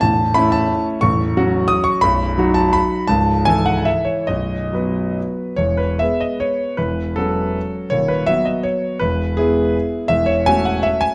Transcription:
<<
  \new Staff \with { instrumentName = "Grand piano" } { \time 3/4 \key a \major \tempo 4 = 166 a''4 b''8 a''4 r8 | \key e \major cis'''2 dis'''8 cis'''8 | b''4. a''8 b''4 | a''4 gis''8 fis''8 e''8 cis''8 |
dis''2 r4 | cis''8 b'8 e''8 dis''8 cis''4 | b'4 a'2 | cis''8 b'8 e''8 dis''8 cis''4 |
b'4 gis'2 | e''8 cis''8 gis''8 fis''8 e''8 gis''8 | }
  \new Staff \with { instrumentName = "Grand piano" } { \clef bass \time 3/4 \key a \major <a,,, a,,>4 <a cis' e'>2 | \key e \major <a,,, a,,>4 <fis cis' fis'>2 | <b,,, b,,>4 <fis dis' fis'>2 | <cis,, cis,>4 <e e' a'>2 |
<b,,, b,,>4 <fis b b'>2 | <e,, e,>4 <gis b b'>2 | <e,, e,>4 <fis cis' fis'>2 | <dis,, dis,>4 <fis b fis'>2 |
<e,, e,>4 <gis b e'>2 | <e,, e,>4 <a cis' fis'>2 | }
>>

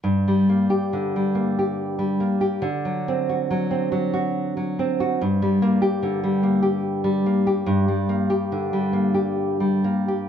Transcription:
\new Staff \with { instrumentName = "Nylon-string guitar" } { \time 3/4 \key g \minor \tempo 4 = 71 g,16 g16 bes16 g'16 d16 g16 bes16 g'8 g16 bes16 g'16 | d16 fis16 c'16 fis'16 fis16 c'16 fis16 fis'8 fis16 c'16 fis'16 | g,16 g16 bes16 g'16 d16 g16 bes16 g'8 g16 bes16 g'16 | g,16 g16 bes16 g'16 d16 g16 bes16 g'8 g16 bes16 g'16 | }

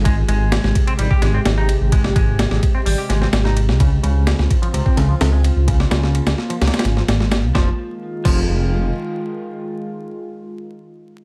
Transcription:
<<
  \new Staff \with { instrumentName = "Ambient pad" } { \time 4/4 \key f \minor \tempo 4 = 128 << { <c g'>1~ | <c g'>1 | f'1~ | f'1 |
<ees aes f'>1~ | <ees aes f'>1 | } \\ { aes1~ | aes1 | c'1 | bes1 |
r1 | r1 | } >> }
  \new Staff \with { instrumentName = "Clean electric guitar" } { \clef bass \time 4/4 \key f \minor aes16 r16 aes4 r16 c'16 g16 g'16 aes16 c'16 r16 ees'16 r8 | aes16 r16 aes4 r16 c'16 g16 g'16 aes16 c'16 r16 ees'16 r8 | des16 r16 des4 r16 f16 c16 c'16 des16 f16 r16 aes16 r8 | des16 r16 des4 r16 f16 c16 c'16 des16 f16 r16 aes16 r8 |
f16 r4 r16 f16 r2 r16 | r1 | }
  \new Staff \with { instrumentName = "Detuned saw bass" } { \clef bass \time 4/4 \key f \minor aes,,8 aes,,8. aes,,16 r8 aes,,16 r16 aes,,16 r16 aes,,8. aes,,16~ | aes,,8 aes,,8. aes,,16 r8 aes,,16 r16 aes,,16 r16 aes,,8. des,16~ | des,8 des,8. des,16 r8 des,16 r16 des,16 r16 des,8. des,16~ | des,8 des,8. des,16 r8 des,16 r16 aes,,16 r16 aes,,8. des,16 |
f,,16 r4 r16 f,,4. r4 | r1 | }
  \new DrumStaff \with { instrumentName = "Drums" } \drummode { \time 4/4 <bd cymr>8 cymr8 <cymr sn>16 sn16 <bd cymr>16 cymr16 cymr16 bd16 <cymr sn>8 <cymr sn>8 cymr8 | <bd cymr>16 sn16 <bd cymr>8 <cymr sn>16 sn16 <bd cymr>8 hho8 <cymr sn>16 sn16 <cymr sn>16 sn16 cymr16 sn16 | <bd cymr>8 cymr8 <cymr sn>16 sn16 <bd cymr>16 cymr16 cymr16 bd16 <cymr sn>8 <cymr sn>8 cymr8 | <bd cymr>16 sn16 <cymr sn>16 sn16 cymr16 <cymr sn>16 sn16 cymr16 <cymr sn>32 <cymr sn>32 <cymr sn>32 <cymr sn>32 <cymr sn>16 sn16 <cymr sn>16 sn16 <cymr sn>8 |
<bd sn>4 r8 <cymc bd>8 r4 r4 | r4 r4 r4 r4 | }
>>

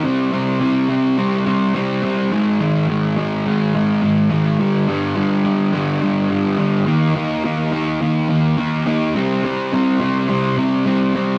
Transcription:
\new Staff \with { instrumentName = "Distorted electric guitar" } { \clef bass \time 4/4 \key c \minor \tempo 4 = 105 <c g c'>8 <c g c'>8 <c g c'>8 <c g c'>8 <c g c'>8 <c g c'>8 <c g c'>8 <c g c'>8 | <aes, ees aes>8 <aes, ees aes>8 <aes, ees aes>8 <aes, ees aes>8 <aes, ees aes>8 <aes, ees aes>8 <aes, ees aes>8 <aes, ees aes>8 | <g, d g>8 <g, d g>8 <g, d g>8 <g, d g>8 <g, d g>8 <g, d g>8 <g, d g>8 <g, d g>8 | <ees bes ees'>8 <ees bes ees'>8 <ees bes ees'>8 <ees bes ees'>8 <ees bes ees'>8 <ees bes ees'>8 <ees bes ees'>8 <ees bes ees'>8 |
<c g c'>8 <c g c'>8 <c g c'>8 <c g c'>8 <c g c'>8 <c g c'>8 <c g c'>8 <c g c'>8 | }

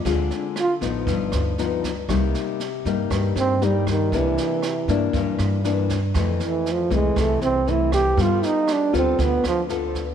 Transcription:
<<
  \new Staff \with { instrumentName = "Grand piano" } { \time 4/4 \key g \minor \tempo 4 = 118 <bes'' d'''>8. r2. r16 | r1 | r1 | r1 |
r1 | }
  \new Staff \with { instrumentName = "Trombone" } { \time 4/4 \key g \minor r8 d'8 f'8 r2 r8 | r2 r8 c'8 g8 ees8 | e2 r2 | r8 e8 f8 aes8 a8 c'8 e'8 g'8 |
f'8 ees'8 d'8 c'8 b8 f8 r4 | }
  \new Staff \with { instrumentName = "Nylon-string guitar" } { \time 4/4 \key g \minor << { <aes c' f'>4 r8 <f b ees'>4. <f b ees'>8 r8 | <g bes ees'>4 r8 <g bes ees'>4. <g bes ees'>4 | <e bes d'>4 r8 <e bes d'>4. <e bes d'>8 r8 | <e a c'>4. <e a c'>4. <e a c'>4 |
<b f' a'>4. <b f' a'>4. <b f' a'>8 r8 | } \\ { d2 g,2 | c2 g,2 | c2 g,2 | f,2 c2 |
g2 d2 | } >> }
  \new Staff \with { instrumentName = "Upright bass" } { \clef bass \time 4/4 \key g \minor d,8 r4 a,,8 g,,8 d,4. | c,8 r4 g,8 g,8 g,4. | c,8 r4 g,8 g,8 g,4. | f,8 r4 c,8 c,8 c,4. |
g,8 r4 d,8 d,8 d,4. | }
  \new DrumStaff \with { instrumentName = "Drums" } \drummode { \time 4/4 <bd sn>8 sn8 <ss sn>8 <bd sn>8 <bd sn>8 <ss sn>8 sn8 <bd sn>8 | <bd ss sn>8 sn8 sn8 <bd sn>8 <bd ss sn>8 sn8 sn8 <bd ss sn>8 | <bd sn>8 sn8 <ss sn>8 <bd sn>8 <bd sn>8 <ss sn>8 sn8 <bd sn>8 | <bd ss sn>8 sn8 sn8 <bd sn>8 <bd ss sn>8 sn8 sn8 <bd ss sn>8 |
<bd sn>8 sn8 <ss sn>8 <bd sn>8 <bd sn>8 <ss sn>8 sn8 <bd sn>8 | }
>>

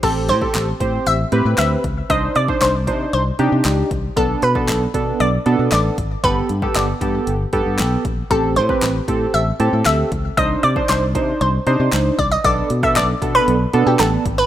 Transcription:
<<
  \new Staff \with { instrumentName = "Synth pluck" } { \time 4/4 \key a \dorian \tempo 4 = 116 a'8 c''4. e''4 e''4 | ees''8 d''8 c''4 c''4 r4 | a'8 b'4. d''4 d''4 | b'4 d''4 r2 |
a'8 c''4. e''4 e''4 | ees''8 d''8 c''4 c''4 r8 d''16 ees''16 | d''8. e''16 d''8. b'4 g'16 a'8. b'16 | }
  \new Staff \with { instrumentName = "Synth keys" } { \time 4/4 \key a \dorian <c' g' a'>8 r16 <c' g' a'>8 r16 <c' g' c''>8. r16 <c' g' b'>4 r8 | <d' ees' c''>8 r16 <d' ees' c''>8 r16 <d' ees' c''>8. r16 <d' ees' g'>4 r8 | <b d' a'>8 r16 <b d' a'>8 r16 <b d' a'>8. r16 <b d' a'>4 r8 | <b g' a'>8 r16 <b g' a'>8 r16 <b g' a'>8. r16 <b g' a'>4 r8 |
<c' g' a'>8 r16 <c' g' b'>8 r16 <c' g' a'>8. r16 <c' g' a'>4 r8 | <d' ees' c''>8 r16 <d' ees' c''>8 r16 <d' ees' c''>8. r16 <d' ees' c''>4 r8 | <b d' a'>8 r16 <b d' a'>8 r16 <b d' a'>8. r16 <b d' a'>4 r8 | }
  \new Staff \with { instrumentName = "Fingered electric bass" } { \clef bass \time 4/4 \key a \dorian a,,8 a,8 a,,8 a,8 a,,8 a,16 a,16 d,8 cis,8 | c,8 c8 c,8 c8 c,8 c16 c16 cis,8 c,8 | b,,8 b,8 b,,8 b,8 b,,8 b,16 b,16 a,,8 aes,,8 | g,,8 g,8 g,,8 g,8 g,,8 g,16 g,16 b,,8 bes,,8 |
a,,8 a,8 a,,8 a,8 a,,8 a,16 a,16 d,8 cis,8 | c,8 c8 c,8 c8 c,8 c16 c16 cis,8 c,8 | b,,8 b,8 b,,8 b,8 b,,8 b,16 b,16 a,,8 aes,,8 | }
  \new DrumStaff \with { instrumentName = "Drums" } \drummode { \time 4/4 <cymc hh bd>8 hh16 bd16 <hc hh sn>8 <hh bd>8 hh8 hh8 <hc hh sn>8 <hh bd>8 | <hh bd>8 hh16 bd16 <hc hh sn>8 <hh bd>8 hh8 hh8 <hc hh sn>8 <hh bd>8 | <hh bd>8 hh16 bd16 <hc hh sn>8 <hh bd>8 hh8 hh8 <hc hh sn>8 <hh bd>8 | <hh bd>8 hh16 bd16 <hc hh sn>8 <hh bd>8 hh8 <hh bd>8 <hc hh sn>8 <hh bd>8 |
<hh bd>8 hh16 bd16 <hc hh sn>8 <hh bd>8 hh8 hh8 <hc hh sn>8 <hh bd>8 | <hh bd>8 hh16 bd16 <hc hh sn>8 <hh bd>8 hh8 hh8 <hc hh sn>8 <hh bd>8 | <hh bd>8 hh16 bd16 <hc hh sn>8 <hh bd>8 hh8 hh8 <hc hh sn>8 <hh bd>8 | }
>>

